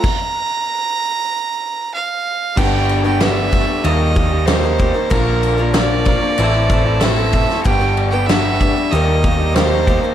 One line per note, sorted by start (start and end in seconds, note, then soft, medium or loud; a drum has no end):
0.00 1.93 A#5 loud
0.00 kick loud
0.04 crash loud
1.94 2.59 F5 medium
2.55 3.63 G1 medium
2.55 3.20 G2 medium
2.55 3.20 D3 medium
2.55 3.05 G3 loud
2.55 3.04 B3 loud
2.55 3.04 D4 loud
2.55 5.08 G4 medium
2.55 3.03 G4 loud
2.55 3.82 B4 medium
2.55 3.03 B4 medium
2.55 3.82 D5 medium
2.55 3.05 G5 medium
2.55 3.82 B5 medium
2.55 kick loud
2.55 crash loud
2.55 crash medium
2.89 crash medium
3.04 3.21 G3 medium
3.04 3.21 B3 medium
3.04 3.22 D4 medium
3.04 3.22 G4 medium
3.04 3.20 B4 medium
3.04 3.22 G5 medium
3.21 3.83 G2 medium
3.21 3.83 D3 medium
3.21 3.51 G3 loud
3.21 3.51 B3 medium
3.21 3.52 D4 loud
3.21 3.53 G4 loud
3.21 3.53 B4 medium
3.21 3.86 E5 loud
3.21 snare loud
3.21 crash medium
3.52 3.68 G3 medium
3.52 3.68 B3 medium
3.52 3.68 D4 medium
3.52 3.67 G4 medium
3.52 3.85 B4 medium
3.52 kick medium
3.52 crash medium
3.68 muted clean electric guitar stroke medium
3.84 4.90 D#2 medium
3.84 4.32 D#3 medium
3.84 4.14 G3 loud
3.84 4.01 A#3 loud
3.84 3.99 D#4 loud
3.84 3.98 G4 loud
3.84 6.36 A#4 medium
3.84 4.16 A#4 medium
3.84 4.48 D#5 medium
3.84 5.10 D#5 medium
3.84 6.36 A#5 medium
3.84 crash medium
3.99 4.16 A#3 medium
3.99 4.16 D#4 medium
3.99 4.17 G4 medium
4.16 4.47 G3 medium
4.16 4.33 A#3 medium
4.16 4.32 D#4 medium
4.16 4.31 G4 medium
4.16 4.47 A#4 medium
4.16 kick medium
4.16 crash medium
4.32 4.48 A#3 medium
4.32 4.48 D#4 medium
4.32 4.49 G4 medium
4.46 5.09 D#3 medium
4.46 4.79 G3 medium
4.46 4.80 A#3 medium
4.46 4.81 D#4 medium
4.46 4.62 A#4 medium
4.46 5.11 C5 medium
4.46 snare loud
4.46 crash medium
4.51 4.81 G4 medium
4.63 4.78 A#3 soft
4.63 4.79 D#4 soft
4.63 4.79 A#4 medium
4.80 4.97 G3 medium
4.80 4.96 A#3 medium
4.80 4.96 D#4 medium
4.80 4.96 G4 medium
4.80 4.93 A#4 medium
4.80 kick medium
4.80 crash medium
4.94 5.09 A#3 soft
4.94 5.10 D#4 soft
4.94 5.10 A#4 medium
4.94 muted clean electric guitar stroke soft
5.10 6.17 A#1 medium
5.10 5.73 A#2 loud
5.10 5.74 D3 loud
5.10 5.60 F3 loud
5.10 5.60 A#3 loud
5.10 6.37 F4 medium
5.10 5.74 A#4 medium
5.10 6.37 D5 medium
5.10 kick loud
5.10 crash medium
5.14 5.59 D4 loud
5.14 5.58 A#4 loud
5.43 crash medium
5.59 5.74 F3 medium
5.59 5.75 A#3 medium
5.59 5.76 D4 medium
5.59 5.76 A#4 medium
5.73 6.36 A#2 medium
5.73 6.37 D3 loud
5.73 6.05 F3 medium
5.73 6.06 A#3 medium
5.73 7.01 D5 loud
5.73 snare loud
5.73 crash medium
5.77 6.07 D4 loud
5.77 6.08 A#4 loud
6.05 6.22 F3 medium
6.05 6.22 A#3 medium
6.05 6.22 D4 medium
6.05 6.21 A#4 medium
6.05 kick medium
6.05 crash medium
6.23 muted clean electric guitar stroke medium
6.38 7.44 A1 medium
6.38 6.86 A2 medium
6.38 6.70 E3 medium
6.38 6.69 A3 medium
6.38 6.56 C4 loud
6.38 7.64 E4 medium
6.38 6.55 E4 loud
6.38 7.64 A4 medium
6.38 6.53 A4 loud
6.38 7.64 C5 medium
6.38 7.64 A5 medium
6.38 crash medium
6.54 6.71 C4 medium
6.54 6.71 E4 medium
6.54 6.72 A4 medium
6.70 7.02 E3 medium
6.70 7.01 A3 medium
6.70 6.87 C4 medium
6.70 6.86 E4 medium
6.70 6.85 A4 medium
6.70 kick medium
6.70 crash medium
6.86 7.02 C4 medium
6.86 7.03 E4 medium
6.86 7.03 A4 medium
7.00 7.63 A2 medium
7.00 7.32 E3 medium
7.00 7.18 A3 medium
7.00 7.34 C4 loud
7.00 7.62 E5 loud
7.00 snare loud
7.00 crash medium
7.04 7.34 E4 medium
7.04 7.35 A4 medium
7.18 7.32 A3 soft
7.18 7.33 C4 soft
7.18 7.34 E4 medium
7.18 7.34 A4 medium
7.33 7.49 E3 medium
7.33 7.49 A3 medium
7.33 7.49 C4 medium
7.33 7.49 E4 medium
7.33 7.48 A4 medium
7.33 kick medium
7.33 crash medium
7.49 7.64 A3 soft
7.49 7.65 C4 medium
7.49 7.65 E4 medium
7.49 7.65 A4 medium
7.49 muted clean electric guitar stroke medium
7.49 snare soft
7.63 8.71 G1 loud
7.63 8.27 G2 loud
7.63 8.28 D3 loud
7.63 8.13 G3 loud
7.63 8.13 B3 loud
7.63 8.12 D4 loud
7.63 10.14 G4 medium
7.63 8.91 B4 medium
7.63 7.79 B4 medium
7.63 8.91 D5 medium
7.63 8.08 G5 loud
7.63 8.91 B5 medium
7.63 kick loud
7.63 crash medium
7.67 8.11 G4 loud
7.80 8.13 G3 soft
7.80 8.13 B3 soft
7.80 8.12 D4 medium
7.80 8.12 B4 medium
7.97 crash medium
8.10 8.28 B3 medium
8.10 8.29 D4 medium
8.10 8.29 G4 medium
8.10 8.29 B4 medium
8.10 8.28 G5 medium
8.15 8.28 G3 medium
8.27 8.90 G2 medium
8.27 8.90 D3 medium
8.27 8.59 G3 medium
8.27 8.59 B3 loud
8.27 8.60 D4 medium
8.27 8.61 B4 medium
8.27 8.93 E5 loud
8.27 snare loud
8.27 crash medium
8.31 8.61 G4 loud
8.60 8.76 G3 medium
8.60 8.76 B3 medium
8.60 8.76 D4 medium
8.60 8.75 G4 medium
8.60 8.93 B4 medium
8.60 kick medium
8.60 crash medium
8.77 muted clean electric guitar stroke medium
8.91 9.98 D#2 loud
8.91 9.39 D#3 loud
8.91 9.21 G3 loud
8.91 9.09 A#3 loud
8.91 9.07 D#4 loud
8.91 9.06 G4 loud
8.91 10.14 A#4 medium
8.91 9.56 D#5 loud
8.91 10.14 D#5 medium
8.91 10.14 A#5 medium
8.91 crash medium
8.95 9.25 A#4 medium
9.08 9.22 A#3 medium
9.08 9.23 D#4 medium
9.08 9.24 G4 medium
9.23 9.54 G3 medium
9.23 9.40 A#3 medium
9.23 9.38 D#4 medium
9.23 9.37 G4 medium
9.23 9.57 A#4 medium
9.23 kick loud
9.23 crash medium
9.38 9.55 A#3 medium
9.38 9.55 D#4 medium
9.38 9.56 G4 medium
9.54 10.14 D#3 medium
9.54 9.85 G3 medium
9.54 9.86 A#3 loud
9.54 9.87 D#4 loud
9.54 9.87 G4 loud
9.54 9.70 A#4 medium
9.54 10.14 C5 loud
9.54 snare loud
9.54 crash medium
9.71 9.87 A#3 soft
9.71 9.88 D#4 soft
9.71 9.87 A#4 medium
9.86 10.02 G3 medium
9.86 10.02 A#3 medium
9.86 10.02 D#4 medium
9.86 10.02 G4 medium
9.86 10.02 A#4 medium
9.86 kick medium
9.86 crash medium
10.03 10.14 A#3 soft
10.03 10.14 D#4 medium
10.03 10.14 A#4 medium
10.03 muted clean electric guitar stroke soft